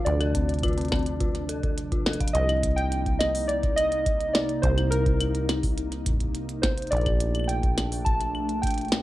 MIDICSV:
0, 0, Header, 1, 6, 480
1, 0, Start_track
1, 0, Tempo, 571429
1, 53, Time_signature, 4, 2, 24, 8
1, 7578, End_track
2, 0, Start_track
2, 0, Title_t, "Synth keys"
2, 0, Program_c, 0, 88
2, 40, Note_on_c, 0, 74, 90
2, 1453, Note_off_c, 0, 74, 0
2, 1960, Note_on_c, 0, 75, 109
2, 2321, Note_on_c, 0, 79, 108
2, 2337, Note_off_c, 0, 75, 0
2, 2661, Note_off_c, 0, 79, 0
2, 2680, Note_on_c, 0, 75, 95
2, 2921, Note_on_c, 0, 74, 101
2, 2934, Note_off_c, 0, 75, 0
2, 3160, Note_on_c, 0, 75, 101
2, 3174, Note_off_c, 0, 74, 0
2, 3641, Note_on_c, 0, 74, 94
2, 3661, Note_off_c, 0, 75, 0
2, 3881, Note_on_c, 0, 72, 98
2, 3894, Note_off_c, 0, 74, 0
2, 4120, Note_on_c, 0, 70, 84
2, 4134, Note_off_c, 0, 72, 0
2, 4573, Note_off_c, 0, 70, 0
2, 5560, Note_on_c, 0, 72, 84
2, 5801, Note_on_c, 0, 74, 94
2, 5814, Note_off_c, 0, 72, 0
2, 6280, Note_on_c, 0, 79, 95
2, 6302, Note_off_c, 0, 74, 0
2, 6760, Note_on_c, 0, 81, 98
2, 6781, Note_off_c, 0, 79, 0
2, 7239, Note_on_c, 0, 79, 98
2, 7261, Note_off_c, 0, 81, 0
2, 7578, Note_off_c, 0, 79, 0
2, 7578, End_track
3, 0, Start_track
3, 0, Title_t, "Synth bell"
3, 0, Program_c, 1, 98
3, 172, Note_on_c, 1, 69, 99
3, 286, Note_off_c, 1, 69, 0
3, 292, Note_on_c, 1, 60, 76
3, 383, Note_off_c, 1, 60, 0
3, 532, Note_on_c, 1, 65, 104
3, 623, Note_off_c, 1, 65, 0
3, 652, Note_on_c, 1, 60, 77
3, 762, Note_off_c, 1, 60, 0
3, 772, Note_on_c, 1, 60, 105
3, 827, Note_off_c, 1, 60, 0
3, 1012, Note_on_c, 1, 65, 82
3, 1126, Note_off_c, 1, 65, 0
3, 1252, Note_on_c, 1, 69, 74
3, 1343, Note_off_c, 1, 69, 0
3, 1372, Note_on_c, 1, 69, 75
3, 1463, Note_off_c, 1, 69, 0
3, 1612, Note_on_c, 1, 65, 76
3, 1703, Note_off_c, 1, 65, 0
3, 1732, Note_on_c, 1, 69, 101
3, 1824, Note_off_c, 1, 69, 0
3, 1852, Note_on_c, 1, 77, 74
3, 1944, Note_off_c, 1, 77, 0
3, 7578, End_track
4, 0, Start_track
4, 0, Title_t, "Ambient pad"
4, 0, Program_c, 2, 92
4, 0, Note_on_c, 2, 48, 83
4, 0, Note_on_c, 2, 53, 76
4, 0, Note_on_c, 2, 62, 93
4, 1939, Note_off_c, 2, 48, 0
4, 1939, Note_off_c, 2, 53, 0
4, 1939, Note_off_c, 2, 62, 0
4, 1973, Note_on_c, 2, 48, 86
4, 1973, Note_on_c, 2, 58, 77
4, 1973, Note_on_c, 2, 63, 94
4, 5779, Note_off_c, 2, 48, 0
4, 5779, Note_off_c, 2, 58, 0
4, 5779, Note_off_c, 2, 63, 0
4, 5813, Note_on_c, 2, 46, 85
4, 5813, Note_on_c, 2, 57, 80
4, 5813, Note_on_c, 2, 62, 96
4, 7578, Note_off_c, 2, 46, 0
4, 7578, Note_off_c, 2, 57, 0
4, 7578, Note_off_c, 2, 62, 0
4, 7578, End_track
5, 0, Start_track
5, 0, Title_t, "Acid bass"
5, 0, Program_c, 3, 38
5, 53, Note_on_c, 3, 38, 90
5, 1949, Note_off_c, 3, 38, 0
5, 1973, Note_on_c, 3, 36, 93
5, 3869, Note_off_c, 3, 36, 0
5, 3893, Note_on_c, 3, 36, 88
5, 5789, Note_off_c, 3, 36, 0
5, 5813, Note_on_c, 3, 34, 93
5, 7578, Note_off_c, 3, 34, 0
5, 7578, End_track
6, 0, Start_track
6, 0, Title_t, "Drums"
6, 53, Note_on_c, 9, 42, 68
6, 137, Note_off_c, 9, 42, 0
6, 173, Note_on_c, 9, 42, 39
6, 173, Note_on_c, 9, 75, 53
6, 257, Note_off_c, 9, 42, 0
6, 257, Note_off_c, 9, 75, 0
6, 292, Note_on_c, 9, 36, 101
6, 293, Note_on_c, 9, 42, 91
6, 376, Note_off_c, 9, 36, 0
6, 377, Note_off_c, 9, 42, 0
6, 413, Note_on_c, 9, 42, 38
6, 453, Note_off_c, 9, 42, 0
6, 453, Note_on_c, 9, 42, 31
6, 493, Note_off_c, 9, 42, 0
6, 493, Note_on_c, 9, 42, 26
6, 532, Note_on_c, 9, 36, 116
6, 533, Note_off_c, 9, 42, 0
6, 533, Note_on_c, 9, 42, 68
6, 533, Note_on_c, 9, 75, 64
6, 572, Note_off_c, 9, 42, 0
6, 572, Note_on_c, 9, 42, 18
6, 613, Note_off_c, 9, 42, 0
6, 613, Note_on_c, 9, 42, 14
6, 616, Note_off_c, 9, 36, 0
6, 617, Note_off_c, 9, 75, 0
6, 652, Note_off_c, 9, 42, 0
6, 652, Note_on_c, 9, 42, 38
6, 682, Note_off_c, 9, 42, 0
6, 682, Note_on_c, 9, 42, 31
6, 713, Note_off_c, 9, 42, 0
6, 713, Note_on_c, 9, 42, 25
6, 743, Note_off_c, 9, 42, 0
6, 743, Note_on_c, 9, 42, 21
6, 772, Note_on_c, 9, 36, 103
6, 773, Note_off_c, 9, 42, 0
6, 773, Note_on_c, 9, 38, 114
6, 773, Note_on_c, 9, 42, 17
6, 773, Note_on_c, 9, 75, 54
6, 803, Note_off_c, 9, 42, 0
6, 803, Note_on_c, 9, 42, 14
6, 833, Note_off_c, 9, 42, 0
6, 833, Note_on_c, 9, 42, 11
6, 856, Note_off_c, 9, 36, 0
6, 857, Note_off_c, 9, 38, 0
6, 857, Note_off_c, 9, 75, 0
6, 863, Note_off_c, 9, 42, 0
6, 863, Note_on_c, 9, 42, 9
6, 892, Note_off_c, 9, 42, 0
6, 892, Note_on_c, 9, 42, 40
6, 976, Note_off_c, 9, 42, 0
6, 1012, Note_on_c, 9, 36, 113
6, 1012, Note_on_c, 9, 42, 65
6, 1096, Note_off_c, 9, 36, 0
6, 1096, Note_off_c, 9, 42, 0
6, 1133, Note_on_c, 9, 42, 40
6, 1217, Note_off_c, 9, 42, 0
6, 1253, Note_on_c, 9, 42, 94
6, 1337, Note_off_c, 9, 42, 0
6, 1372, Note_on_c, 9, 36, 105
6, 1373, Note_on_c, 9, 42, 40
6, 1456, Note_off_c, 9, 36, 0
6, 1457, Note_off_c, 9, 42, 0
6, 1493, Note_on_c, 9, 42, 65
6, 1577, Note_off_c, 9, 42, 0
6, 1612, Note_on_c, 9, 36, 109
6, 1613, Note_on_c, 9, 42, 40
6, 1696, Note_off_c, 9, 36, 0
6, 1697, Note_off_c, 9, 42, 0
6, 1733, Note_on_c, 9, 38, 119
6, 1793, Note_on_c, 9, 42, 65
6, 1817, Note_off_c, 9, 38, 0
6, 1852, Note_on_c, 9, 36, 100
6, 1853, Note_off_c, 9, 42, 0
6, 1853, Note_on_c, 9, 42, 74
6, 1912, Note_off_c, 9, 42, 0
6, 1912, Note_on_c, 9, 42, 82
6, 1936, Note_off_c, 9, 36, 0
6, 1972, Note_off_c, 9, 42, 0
6, 1972, Note_on_c, 9, 42, 68
6, 2056, Note_off_c, 9, 42, 0
6, 2092, Note_on_c, 9, 42, 41
6, 2092, Note_on_c, 9, 75, 55
6, 2176, Note_off_c, 9, 42, 0
6, 2176, Note_off_c, 9, 75, 0
6, 2212, Note_on_c, 9, 36, 104
6, 2213, Note_on_c, 9, 42, 95
6, 2296, Note_off_c, 9, 36, 0
6, 2297, Note_off_c, 9, 42, 0
6, 2333, Note_on_c, 9, 42, 43
6, 2417, Note_off_c, 9, 42, 0
6, 2452, Note_on_c, 9, 42, 70
6, 2536, Note_off_c, 9, 42, 0
6, 2572, Note_on_c, 9, 36, 118
6, 2573, Note_on_c, 9, 42, 41
6, 2656, Note_off_c, 9, 36, 0
6, 2657, Note_off_c, 9, 42, 0
6, 2693, Note_on_c, 9, 38, 117
6, 2693, Note_on_c, 9, 42, 96
6, 2693, Note_on_c, 9, 75, 53
6, 2777, Note_off_c, 9, 38, 0
6, 2777, Note_off_c, 9, 42, 0
6, 2777, Note_off_c, 9, 75, 0
6, 2812, Note_on_c, 9, 46, 80
6, 2896, Note_off_c, 9, 46, 0
6, 2932, Note_on_c, 9, 42, 68
6, 3016, Note_off_c, 9, 42, 0
6, 3052, Note_on_c, 9, 36, 108
6, 3052, Note_on_c, 9, 42, 40
6, 3136, Note_off_c, 9, 36, 0
6, 3136, Note_off_c, 9, 42, 0
6, 3172, Note_on_c, 9, 42, 97
6, 3172, Note_on_c, 9, 75, 39
6, 3256, Note_off_c, 9, 42, 0
6, 3256, Note_off_c, 9, 75, 0
6, 3292, Note_on_c, 9, 42, 42
6, 3376, Note_off_c, 9, 42, 0
6, 3413, Note_on_c, 9, 36, 116
6, 3413, Note_on_c, 9, 42, 68
6, 3497, Note_off_c, 9, 36, 0
6, 3497, Note_off_c, 9, 42, 0
6, 3533, Note_on_c, 9, 42, 43
6, 3617, Note_off_c, 9, 42, 0
6, 3653, Note_on_c, 9, 38, 120
6, 3653, Note_on_c, 9, 42, 98
6, 3737, Note_off_c, 9, 38, 0
6, 3737, Note_off_c, 9, 42, 0
6, 3773, Note_on_c, 9, 42, 42
6, 3857, Note_off_c, 9, 42, 0
6, 3892, Note_on_c, 9, 36, 108
6, 3892, Note_on_c, 9, 42, 69
6, 3976, Note_off_c, 9, 36, 0
6, 3976, Note_off_c, 9, 42, 0
6, 4013, Note_on_c, 9, 42, 41
6, 4013, Note_on_c, 9, 75, 53
6, 4097, Note_off_c, 9, 42, 0
6, 4097, Note_off_c, 9, 75, 0
6, 4133, Note_on_c, 9, 42, 97
6, 4217, Note_off_c, 9, 42, 0
6, 4253, Note_on_c, 9, 36, 122
6, 4253, Note_on_c, 9, 42, 42
6, 4337, Note_off_c, 9, 36, 0
6, 4337, Note_off_c, 9, 42, 0
6, 4372, Note_on_c, 9, 42, 69
6, 4372, Note_on_c, 9, 75, 64
6, 4456, Note_off_c, 9, 42, 0
6, 4456, Note_off_c, 9, 75, 0
6, 4492, Note_on_c, 9, 42, 42
6, 4576, Note_off_c, 9, 42, 0
6, 4612, Note_on_c, 9, 38, 121
6, 4612, Note_on_c, 9, 42, 94
6, 4612, Note_on_c, 9, 75, 52
6, 4696, Note_off_c, 9, 38, 0
6, 4696, Note_off_c, 9, 42, 0
6, 4696, Note_off_c, 9, 75, 0
6, 4732, Note_on_c, 9, 46, 75
6, 4733, Note_on_c, 9, 36, 112
6, 4816, Note_off_c, 9, 46, 0
6, 4817, Note_off_c, 9, 36, 0
6, 4852, Note_on_c, 9, 42, 67
6, 4936, Note_off_c, 9, 42, 0
6, 4972, Note_on_c, 9, 42, 42
6, 5056, Note_off_c, 9, 42, 0
6, 5092, Note_on_c, 9, 42, 99
6, 5093, Note_on_c, 9, 36, 119
6, 5122, Note_off_c, 9, 36, 0
6, 5122, Note_on_c, 9, 36, 93
6, 5153, Note_off_c, 9, 36, 0
6, 5153, Note_on_c, 9, 36, 79
6, 5176, Note_off_c, 9, 42, 0
6, 5183, Note_off_c, 9, 36, 0
6, 5183, Note_on_c, 9, 36, 64
6, 5212, Note_on_c, 9, 42, 42
6, 5213, Note_off_c, 9, 36, 0
6, 5213, Note_on_c, 9, 36, 52
6, 5243, Note_off_c, 9, 36, 0
6, 5243, Note_on_c, 9, 36, 45
6, 5273, Note_off_c, 9, 36, 0
6, 5273, Note_on_c, 9, 36, 37
6, 5296, Note_off_c, 9, 42, 0
6, 5303, Note_off_c, 9, 36, 0
6, 5303, Note_on_c, 9, 36, 31
6, 5331, Note_on_c, 9, 42, 68
6, 5387, Note_off_c, 9, 36, 0
6, 5415, Note_off_c, 9, 42, 0
6, 5452, Note_on_c, 9, 42, 42
6, 5536, Note_off_c, 9, 42, 0
6, 5572, Note_on_c, 9, 38, 125
6, 5572, Note_on_c, 9, 42, 97
6, 5573, Note_on_c, 9, 36, 112
6, 5656, Note_off_c, 9, 38, 0
6, 5656, Note_off_c, 9, 42, 0
6, 5657, Note_off_c, 9, 36, 0
6, 5692, Note_on_c, 9, 42, 38
6, 5731, Note_off_c, 9, 42, 0
6, 5731, Note_on_c, 9, 42, 32
6, 5772, Note_off_c, 9, 42, 0
6, 5772, Note_on_c, 9, 42, 26
6, 5811, Note_off_c, 9, 42, 0
6, 5811, Note_on_c, 9, 42, 68
6, 5852, Note_off_c, 9, 42, 0
6, 5852, Note_on_c, 9, 42, 18
6, 5892, Note_off_c, 9, 42, 0
6, 5892, Note_on_c, 9, 42, 14
6, 5932, Note_off_c, 9, 42, 0
6, 5932, Note_on_c, 9, 42, 42
6, 5932, Note_on_c, 9, 75, 52
6, 5933, Note_on_c, 9, 36, 126
6, 6016, Note_off_c, 9, 42, 0
6, 6016, Note_off_c, 9, 75, 0
6, 6017, Note_off_c, 9, 36, 0
6, 6052, Note_on_c, 9, 42, 92
6, 6136, Note_off_c, 9, 42, 0
6, 6172, Note_on_c, 9, 42, 41
6, 6172, Note_on_c, 9, 75, 36
6, 6212, Note_off_c, 9, 75, 0
6, 6212, Note_on_c, 9, 75, 29
6, 6252, Note_off_c, 9, 75, 0
6, 6252, Note_on_c, 9, 75, 24
6, 6256, Note_off_c, 9, 42, 0
6, 6292, Note_on_c, 9, 42, 72
6, 6336, Note_off_c, 9, 75, 0
6, 6376, Note_off_c, 9, 42, 0
6, 6412, Note_on_c, 9, 36, 113
6, 6412, Note_on_c, 9, 42, 42
6, 6496, Note_off_c, 9, 36, 0
6, 6496, Note_off_c, 9, 42, 0
6, 6533, Note_on_c, 9, 38, 122
6, 6533, Note_on_c, 9, 42, 96
6, 6533, Note_on_c, 9, 75, 50
6, 6617, Note_off_c, 9, 38, 0
6, 6617, Note_off_c, 9, 42, 0
6, 6617, Note_off_c, 9, 75, 0
6, 6653, Note_on_c, 9, 46, 76
6, 6737, Note_off_c, 9, 46, 0
6, 6772, Note_on_c, 9, 36, 127
6, 6772, Note_on_c, 9, 42, 68
6, 6856, Note_off_c, 9, 36, 0
6, 6856, Note_off_c, 9, 42, 0
6, 6893, Note_on_c, 9, 42, 41
6, 6977, Note_off_c, 9, 42, 0
6, 7012, Note_on_c, 9, 75, 37
6, 7096, Note_off_c, 9, 75, 0
6, 7132, Note_on_c, 9, 42, 39
6, 7216, Note_off_c, 9, 42, 0
6, 7252, Note_on_c, 9, 36, 112
6, 7252, Note_on_c, 9, 42, 63
6, 7283, Note_off_c, 9, 42, 0
6, 7283, Note_on_c, 9, 42, 54
6, 7313, Note_off_c, 9, 42, 0
6, 7313, Note_on_c, 9, 42, 42
6, 7336, Note_off_c, 9, 36, 0
6, 7343, Note_off_c, 9, 42, 0
6, 7343, Note_on_c, 9, 42, 35
6, 7373, Note_off_c, 9, 42, 0
6, 7373, Note_on_c, 9, 42, 41
6, 7403, Note_off_c, 9, 42, 0
6, 7403, Note_on_c, 9, 42, 24
6, 7433, Note_off_c, 9, 42, 0
6, 7433, Note_on_c, 9, 42, 19
6, 7463, Note_off_c, 9, 42, 0
6, 7463, Note_on_c, 9, 42, 17
6, 7492, Note_off_c, 9, 42, 0
6, 7492, Note_on_c, 9, 38, 127
6, 7492, Note_on_c, 9, 42, 92
6, 7576, Note_off_c, 9, 38, 0
6, 7576, Note_off_c, 9, 42, 0
6, 7578, End_track
0, 0, End_of_file